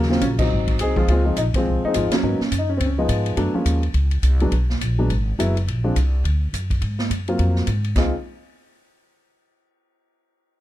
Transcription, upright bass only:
0.00 0.20 D#2 medium
0.21 0.49 A#1 medium
0.51 0.78 G#1 medium
0.79 1.07 C2 medium
1.08 1.36 C#2 medium
1.36 1.52 A#1 medium
1.54 muted upright bass stroke soft
1.65 1.81 C2 medium
1.83 muted upright bass stroke soft
1.94 2.10 G#1 medium
2.12 muted upright bass stroke soft
2.23 2.39 G#2 medium
2.40 muted upright bass stroke soft
2.51 2.79 F#2 medium
2.80 3.08 C#2 medium
3.08 3.36 G#2 medium
3.37 3.53 F#2 medium
3.54 muted upright bass stroke soft
3.65 3.93 D#2 medium
3.94 4.22 C#2 medium
4.22 4.51 C2 medium
4.51 4.80 B1 medium
4.81 5.09 A#1 medium
5.10 5.37 G#1 medium
5.38 5.66 F#1 medium
5.68 5.95 A#1 medium
5.96 6.23 C2 medium
6.24 6.52 D2 medium
6.53 6.81 F#2 medium
6.81 7.09 G#2 medium
7.10 7.38 F#2 medium
7.39 7.67 F2 medium
7.67 7.95 G#2 medium
7.96 8.12 C#2 medium

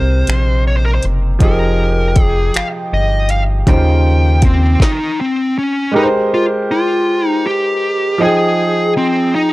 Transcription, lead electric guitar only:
0.00 0.64 C5 medium
0.68 0.76 C#5 medium
0.77 0.85 C5 medium
0.86 0.94 A#4 medium
0.95 1.03 C5 medium
1.43 2.23 A#4 medium
2.23 2.58 G#4 medium
2.56 2.66 F5 medium
2.94 3.31 D#5 medium
3.31 3.41 F5 loud
3.69 5.53 G5 medium
4.45 4.82 C4 medium
4.83 5.20 D#4 medium
5.21 5.58 C4 medium
5.58 5.92 C#4 medium
5.96 6.06 D#4 loud
6.34 6.44 F4 medium
6.71 7.27 F4 loud
7.27 7.46 D#4 loud
7.47 8.22 G4 loud
8.22 8.92 G#4 loud
8.98 9.35 C4 medium
9.35 9.53 D#4 loud

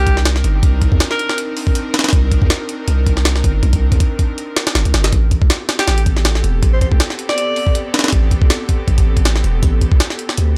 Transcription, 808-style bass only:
0.00 0.43 C2 medium
0.44 0.61 G1 loud
0.63 0.90 C2 loud
0.92 1.00 D#2 medium
2.13 2.40 C2 loud
2.42 2.49 D#2 loud
2.88 3.43 C2 medium
3.44 3.61 G1 loud
3.63 3.90 C2 loud
3.92 3.99 D#2 medium
4.75 4.84 G1 medium
4.86 4.93 C2 medium
4.94 5.11 G1 loud
5.13 5.40 A1 loud
5.42 5.49 C2 medium
5.88 6.43 A1 medium
6.44 6.61 E1 loud
6.63 6.90 A1 loud
6.92 6.99 C2 loud
8.13 8.40 A1 loud
8.42 8.49 C2 loud
8.88 9.43 A1 medium
9.44 9.61 E1 loud
9.63 9.90 A1 loud
9.92 9.99 C2 loud
10.38 10.58 D2 medium

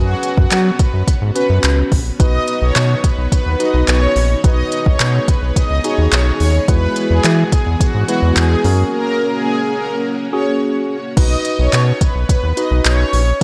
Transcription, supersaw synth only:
0.00 0.15 F#4 loud
0.37 0.57 F#4 medium
0.80 0.90 B4 medium
1.36 1.46 B4 medium
2.20 2.40 D#5 loud
2.62 2.82 C#5 medium
3.04 3.14 B4 medium
3.32 3.52 B4 loud
3.60 3.70 D#5 medium
3.88 4.28 C#5 medium
4.44 4.64 D#5 loud
4.86 5.06 C#5 medium
5.28 5.38 B4 medium
5.56 5.76 D#5 medium
5.84 5.94 C#5 medium
6.12 6.22 C#5 medium
6.40 6.50 C#5 medium
6.68 6.88 B4 loud
7.10 7.31 G#4 medium
7.52 7.62 G#4 medium
7.80 8.01 F#4 medium
8.08 8.18 F#4 medium
8.36 8.76 G#4 medium
8.92 9.13 A#4 loud
9.35 9.55 G#4 medium
9.77 9.87 A#4 medium
10.33 10.43 C#5 medium
11.17 11.37 D#5 loud
11.59 11.79 C#5 medium
12.01 12.11 B4 medium
12.29 12.49 B4 loud
12.57 12.67 D#5 medium
12.85 13.25 C#5 medium

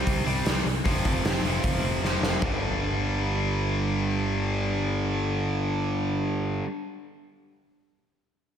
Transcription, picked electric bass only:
0.07 0.21 C2 medium
0.26 0.41 C2 medium
0.45 0.60 C2 medium
0.65 0.80 C2 medium
0.86 1.00 F1 medium
1.05 1.20 F1 medium
1.24 1.39 F1 medium
1.43 1.58 F1 medium
1.64 1.79 F1 medium
1.82 1.97 F1 medium
2.02 2.17 F1 medium
2.21 2.37 F1 medium
2.43 6.61 G1 medium

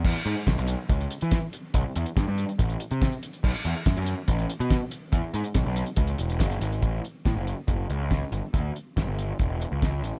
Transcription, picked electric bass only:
0.04 0.13 E2 loud
0.26 0.34 G#2 loud
0.47 0.55 B1 medium
0.58 0.74 B1 medium
0.89 1.06 C#2 loud
1.22 1.38 E3 medium
1.74 1.82 C2 loud
1.96 2.04 E2 loud
2.17 2.25 G2 medium
2.28 2.44 G2 loud
2.59 2.75 A1 loud
2.91 3.07 C3 loud
3.44 3.52 B1 loud
3.65 3.73 E2 loud
3.86 3.94 F#2 medium
3.97 4.13 F#2 loud
4.28 4.45 A1 loud
4.60 4.76 B2 medium
5.13 5.21 E2 loud
5.34 5.42 G#2 loud
5.55 5.64 B1 medium
5.66 5.82 B1 medium
5.98 6.14 C#2 loud
6.19 6.38 E1 medium
6.40 6.60 F#1 medium
6.61 6.80 G#1 medium
6.83 6.99 A1 medium
7.26 7.34 A2 medium
7.35 7.52 F#1 medium
7.68 7.85 F#1 medium
7.90 8.22 C#2 medium
8.32 8.40 G1 medium
8.54 8.70 D2 loud
8.97 9.05 G1 medium
9.07 9.32 G1 medium
9.40 9.64 E1 medium
9.72 10.03 C#2 medium
10.03 10.11 A1 medium

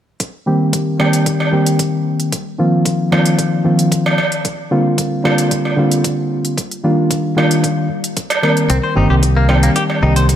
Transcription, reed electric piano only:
0.46 0.96 D#3 medium
0.46 0.97 G3 medium
0.46 0.97 A#3 medium
0.46 0.97 C4 medium
0.46 0.97 G4 medium
0.99 1.50 D#3 medium
0.99 1.50 G3 medium
0.99 1.50 A#3 medium
0.99 1.50 C4 medium
0.99 1.50 G4 medium
1.51 2.30 D#3 medium
1.51 2.30 G3 medium
1.51 2.31 A#3 medium
1.51 2.31 C4 medium
1.51 2.31 G4 medium
2.58 3.09 D#3 medium
2.58 3.09 F3 medium
2.58 3.09 A#3 medium
2.58 3.09 C4 medium
2.58 3.09 F4 medium
3.12 3.62 D#3 medium
3.12 3.62 F3 medium
3.12 3.62 A#3 medium
3.12 3.62 C4 medium
3.12 3.62 F4 medium
3.64 4.16 D#3 medium
3.64 4.16 F3 medium
3.64 4.17 A#3 medium
3.64 4.17 C4 medium
3.64 4.17 F4 medium
4.71 5.21 D3 medium
4.71 5.21 G3 medium
4.71 5.22 A#3 medium
4.71 5.22 C4 medium
4.71 5.22 F4 medium
5.24 5.74 D3 medium
5.24 5.74 G3 medium
5.24 5.74 A#3 medium
5.24 5.75 C4 medium
5.24 5.75 F4 medium
5.77 6.55 D3 medium
5.77 6.56 G3 medium
5.77 6.56 A#3 medium
5.77 6.56 C4 medium
5.77 6.56 F4 medium
6.83 7.34 D#3 medium
6.83 7.34 G3 medium
6.83 7.34 A#3 medium
6.83 7.34 D4 medium
6.83 7.34 F4 medium
7.36 7.87 D#3 medium
7.36 7.87 G3 medium
7.36 7.87 A#3 medium
7.36 7.87 D4 medium
7.36 7.87 F4 medium
8.42 8.93 D#3 medium
8.42 8.93 G3 medium
8.42 8.93 A#3 medium
8.42 8.93 C4 medium
8.42 8.93 A#4 medium
8.95 9.46 D#3 medium
8.95 9.46 G3 medium
8.95 9.46 A#3 medium
8.95 9.46 C4 medium
8.95 9.46 G4 medium
9.49 9.99 D#3 medium
9.49 9.99 G3 medium
9.49 9.99 A#3 medium
9.49 9.99 C4 medium
9.49 10.00 G4 medium
10.02 10.36 D#3 medium
10.02 10.36 G3 medium
10.02 10.36 A#3 medium
10.02 10.36 C4 medium
10.02 10.36 G4 medium

